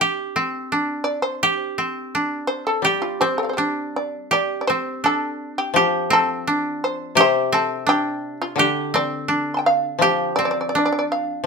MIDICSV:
0, 0, Header, 1, 4, 480
1, 0, Start_track
1, 0, Tempo, 706714
1, 2, Time_signature, 2, 2, 24, 8
1, 1922, Tempo, 732601
1, 3362, Tempo, 708383
1, 6242, Tempo, 725514
1, 7688, End_track
2, 0, Start_track
2, 0, Title_t, "Shamisen"
2, 0, Program_c, 0, 106
2, 0, Note_on_c, 0, 67, 84
2, 104, Note_off_c, 0, 67, 0
2, 706, Note_on_c, 0, 74, 84
2, 823, Note_off_c, 0, 74, 0
2, 830, Note_on_c, 0, 72, 85
2, 1057, Note_off_c, 0, 72, 0
2, 1680, Note_on_c, 0, 72, 85
2, 1793, Note_off_c, 0, 72, 0
2, 1811, Note_on_c, 0, 69, 86
2, 1919, Note_off_c, 0, 69, 0
2, 1931, Note_on_c, 0, 67, 76
2, 2036, Note_off_c, 0, 67, 0
2, 2045, Note_on_c, 0, 65, 66
2, 2153, Note_off_c, 0, 65, 0
2, 2169, Note_on_c, 0, 67, 71
2, 2171, Note_on_c, 0, 72, 73
2, 2276, Note_off_c, 0, 67, 0
2, 2283, Note_on_c, 0, 69, 69
2, 2291, Note_on_c, 0, 79, 28
2, 2313, Note_off_c, 0, 79, 0
2, 2316, Note_on_c, 0, 77, 31
2, 2322, Note_off_c, 0, 72, 0
2, 2325, Note_on_c, 0, 74, 32
2, 2355, Note_off_c, 0, 77, 0
2, 2357, Note_on_c, 0, 72, 41
2, 2375, Note_off_c, 0, 69, 0
2, 2381, Note_off_c, 0, 74, 0
2, 2383, Note_on_c, 0, 69, 45
2, 2405, Note_off_c, 0, 69, 0
2, 2408, Note_on_c, 0, 67, 61
2, 2449, Note_off_c, 0, 72, 0
2, 2665, Note_on_c, 0, 74, 68
2, 2744, Note_off_c, 0, 67, 0
2, 2880, Note_off_c, 0, 74, 0
2, 2903, Note_on_c, 0, 74, 80
2, 3075, Note_off_c, 0, 74, 0
2, 3090, Note_on_c, 0, 74, 53
2, 3128, Note_off_c, 0, 74, 0
2, 3130, Note_on_c, 0, 72, 84
2, 3350, Note_off_c, 0, 72, 0
2, 3382, Note_on_c, 0, 69, 85
2, 3713, Note_off_c, 0, 69, 0
2, 3737, Note_on_c, 0, 67, 75
2, 3845, Note_off_c, 0, 67, 0
2, 3862, Note_on_c, 0, 65, 75
2, 4078, Note_off_c, 0, 65, 0
2, 4110, Note_on_c, 0, 69, 96
2, 4550, Note_off_c, 0, 69, 0
2, 4590, Note_on_c, 0, 72, 83
2, 4800, Note_off_c, 0, 72, 0
2, 4837, Note_on_c, 0, 72, 100
2, 5043, Note_off_c, 0, 72, 0
2, 5066, Note_on_c, 0, 69, 84
2, 5277, Note_off_c, 0, 69, 0
2, 5301, Note_on_c, 0, 67, 102
2, 5625, Note_off_c, 0, 67, 0
2, 5658, Note_on_c, 0, 65, 90
2, 5761, Note_off_c, 0, 65, 0
2, 5770, Note_on_c, 0, 62, 75
2, 5989, Note_off_c, 0, 62, 0
2, 6023, Note_on_c, 0, 74, 102
2, 6418, Note_on_c, 0, 84, 44
2, 6432, Note_off_c, 0, 74, 0
2, 6435, Note_on_c, 0, 81, 45
2, 6443, Note_off_c, 0, 81, 0
2, 6446, Note_on_c, 0, 79, 47
2, 6494, Note_off_c, 0, 79, 0
2, 6497, Note_on_c, 0, 77, 82
2, 6507, Note_off_c, 0, 84, 0
2, 6716, Note_off_c, 0, 77, 0
2, 6729, Note_on_c, 0, 77, 81
2, 6954, Note_off_c, 0, 77, 0
2, 6956, Note_on_c, 0, 74, 85
2, 7008, Note_off_c, 0, 74, 0
2, 7019, Note_on_c, 0, 74, 61
2, 7049, Note_off_c, 0, 74, 0
2, 7057, Note_on_c, 0, 74, 67
2, 7108, Note_off_c, 0, 74, 0
2, 7122, Note_on_c, 0, 74, 51
2, 7165, Note_off_c, 0, 74, 0
2, 7177, Note_on_c, 0, 74, 60
2, 7218, Note_off_c, 0, 74, 0
2, 7238, Note_on_c, 0, 74, 52
2, 7273, Note_off_c, 0, 74, 0
2, 7285, Note_on_c, 0, 74, 69
2, 7321, Note_off_c, 0, 74, 0
2, 7331, Note_on_c, 0, 74, 64
2, 7365, Note_off_c, 0, 74, 0
2, 7372, Note_on_c, 0, 74, 72
2, 7413, Note_off_c, 0, 74, 0
2, 7459, Note_on_c, 0, 77, 77
2, 7673, Note_off_c, 0, 77, 0
2, 7688, End_track
3, 0, Start_track
3, 0, Title_t, "Koto"
3, 0, Program_c, 1, 107
3, 0, Note_on_c, 1, 60, 68
3, 0, Note_on_c, 1, 62, 72
3, 7, Note_on_c, 1, 67, 87
3, 241, Note_off_c, 1, 60, 0
3, 244, Note_on_c, 1, 60, 81
3, 487, Note_off_c, 1, 62, 0
3, 489, Note_on_c, 1, 62, 73
3, 968, Note_off_c, 1, 67, 0
3, 970, Note_on_c, 1, 67, 99
3, 1207, Note_off_c, 1, 60, 0
3, 1210, Note_on_c, 1, 60, 71
3, 1456, Note_off_c, 1, 62, 0
3, 1459, Note_on_c, 1, 62, 69
3, 1930, Note_off_c, 1, 67, 0
3, 1933, Note_on_c, 1, 67, 90
3, 2171, Note_off_c, 1, 60, 0
3, 2174, Note_on_c, 1, 60, 74
3, 2411, Note_off_c, 1, 62, 0
3, 2414, Note_on_c, 1, 62, 69
3, 2889, Note_off_c, 1, 67, 0
3, 2892, Note_on_c, 1, 67, 93
3, 3143, Note_off_c, 1, 60, 0
3, 3145, Note_on_c, 1, 60, 73
3, 3366, Note_off_c, 1, 62, 0
3, 3369, Note_on_c, 1, 62, 71
3, 3856, Note_off_c, 1, 67, 0
3, 3858, Note_on_c, 1, 67, 101
3, 4089, Note_off_c, 1, 60, 0
3, 4091, Note_on_c, 1, 60, 84
3, 4340, Note_off_c, 1, 62, 0
3, 4342, Note_on_c, 1, 62, 76
3, 4809, Note_off_c, 1, 67, 0
3, 4812, Note_on_c, 1, 67, 110
3, 5051, Note_off_c, 1, 60, 0
3, 5054, Note_on_c, 1, 60, 84
3, 5282, Note_off_c, 1, 62, 0
3, 5285, Note_on_c, 1, 62, 81
3, 5775, Note_off_c, 1, 67, 0
3, 5778, Note_on_c, 1, 67, 93
3, 6010, Note_off_c, 1, 60, 0
3, 6012, Note_on_c, 1, 60, 70
3, 6243, Note_off_c, 1, 62, 0
3, 6246, Note_on_c, 1, 62, 75
3, 6731, Note_off_c, 1, 67, 0
3, 6734, Note_on_c, 1, 67, 91
3, 6972, Note_off_c, 1, 60, 0
3, 6975, Note_on_c, 1, 60, 71
3, 7214, Note_off_c, 1, 62, 0
3, 7217, Note_on_c, 1, 62, 79
3, 7688, Note_off_c, 1, 60, 0
3, 7688, Note_off_c, 1, 62, 0
3, 7688, Note_off_c, 1, 67, 0
3, 7688, End_track
4, 0, Start_track
4, 0, Title_t, "Koto"
4, 0, Program_c, 2, 107
4, 1916, Note_on_c, 2, 55, 52
4, 3360, Note_off_c, 2, 55, 0
4, 3842, Note_on_c, 2, 53, 67
4, 4803, Note_on_c, 2, 48, 67
4, 5278, Note_off_c, 2, 53, 0
4, 5753, Note_on_c, 2, 50, 61
4, 5759, Note_off_c, 2, 48, 0
4, 6710, Note_on_c, 2, 53, 61
4, 7206, Note_off_c, 2, 50, 0
4, 7662, Note_off_c, 2, 53, 0
4, 7688, End_track
0, 0, End_of_file